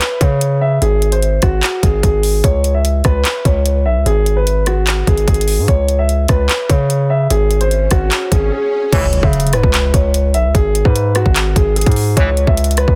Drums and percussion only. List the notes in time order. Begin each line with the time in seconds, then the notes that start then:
0.01 clap, closed hi-hat
0.21 kick, closed hi-hat
0.41 closed hi-hat
0.82 closed hi-hat
1.02 closed hi-hat
1.12 closed hi-hat
1.23 closed hi-hat
1.42 kick, cross-stick, closed hi-hat
1.63 clap, closed hi-hat
1.83 kick, closed hi-hat
2.03 kick, closed hi-hat
2.23 open hi-hat
2.44 kick, closed hi-hat
2.64 closed hi-hat
2.85 closed hi-hat
3.04 kick, cross-stick, closed hi-hat
3.25 clap, closed hi-hat
3.45 kick, closed hi-hat
3.66 closed hi-hat
4.06 closed hi-hat
4.26 closed hi-hat
4.47 closed hi-hat
4.66 cross-stick, closed hi-hat
4.87 clap, closed hi-hat
5.07 kick, closed hi-hat
5.18 closed hi-hat
5.28 kick, closed hi-hat
5.34 closed hi-hat
5.41 closed hi-hat
5.48 open hi-hat
5.68 kick, closed hi-hat
5.88 closed hi-hat
6.09 closed hi-hat
6.28 kick, cross-stick, closed hi-hat
6.49 clap, closed hi-hat
6.69 kick, closed hi-hat
6.90 closed hi-hat
7.30 closed hi-hat
7.51 closed hi-hat
7.61 closed hi-hat
7.71 closed hi-hat
7.91 kick, cross-stick, closed hi-hat
8.11 clap, closed hi-hat
8.32 kick, closed hi-hat
8.93 kick, closed hi-hat, crash
9.13 closed hi-hat
9.23 kick
9.33 closed hi-hat
9.40 closed hi-hat
9.47 closed hi-hat
9.53 cross-stick, closed hi-hat
9.63 kick
9.74 clap, closed hi-hat
9.94 kick, closed hi-hat
10.14 closed hi-hat
10.34 closed hi-hat
10.55 kick, closed hi-hat
10.75 closed hi-hat
10.85 kick
10.96 closed hi-hat
11.15 cross-stick, closed hi-hat
11.26 kick
11.36 clap, closed hi-hat
11.56 kick, closed hi-hat
11.76 closed hi-hat
11.81 closed hi-hat
11.86 kick, closed hi-hat
11.91 closed hi-hat
11.96 open hi-hat
12.17 kick, closed hi-hat
12.37 closed hi-hat
12.47 kick
12.57 closed hi-hat
12.64 closed hi-hat
12.71 closed hi-hat
12.77 cross-stick, closed hi-hat
12.88 kick